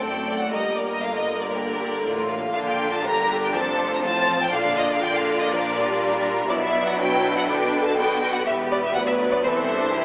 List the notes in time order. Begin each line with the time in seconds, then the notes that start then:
Already playing: C4
0.00 F#1 F#2 A3 A4 D5 G5
0.38 F#5
0.52 G1 G2 G3 A#3 A#4 D#5
0.77 D5
0.90 D#5
1.03 D3 F5
1.16 D#5
1.40 D5
1.53 G4 A#4 D5
1.79 G4
2.04 A1 A2 F4 D5
2.32 F5
2.54 A#1 A#2 D3 D4 F4 F5
2.66 G5
2.93 A5
3.05 G1 G2 D3 G4 A#4 A#5
3.44 G5
3.53 F1 F2 F3 A4 C5 A5
3.93 A#5
4.04 A1 A2 F3 C4 F4 A5
4.41 G5
4.53 A#1 A#2 D3 D4 F4 D5 F5
4.78 D#5
4.92 F5
5.02 D3 D5 G5
5.14 F5
5.40 D#5
5.52 F3 A#4 D5
5.78 G3
6.03 A#4
6.50 B1 B2 F#3 B3 E4 D5
6.63 E5
6.87 F#5
7.00 D4 E4 B4 G5
7.37 F#5
7.49 D3 D4 G5
7.86 A5
7.97 B3 F#4 B4 G5
8.34 F#5
8.46 E1 E2 G3 B3 G4 B4 E5
8.72 D5
8.84 E5
8.95 D2 F#3 B4 D5 F#5
9.07 E5
9.31 D5
9.44 C2 E3 C4 A4 C5 E5
9.51 B4
9.58 C5
9.71 D4
9.96 E3 E4 G4 E5